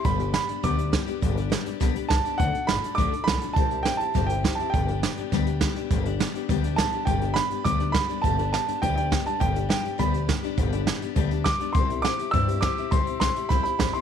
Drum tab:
HH |xxxxxxxx|xxxxxxxx|xxxxxxxx|xxxxxxxx|
SD |--o---o-|--o-o-o-|--o-o-o-|--o-o-o-|
BD |o---o-o-|o---o-o-|o---o-o-|o---o-o-|

HH |xxxxxxxx|xxxxxxxx|xxxxxxxx|xxxxxxxx|
SD |--o-o-o-|--o---o-|--o-o-o-|--o---o-|
BD |o---o-o-|o---o-o-|o---o-o-|o---o-o-|

HH |xxxxxxxx|xxxxxxxx|xxxxxxxx|xxxxxxxx|
SD |--o-o-o-|--o---o-|--o---o-|--o-o-o-|
BD |o---o-o-|o---o-o-|o---o-o-|o---o-o-|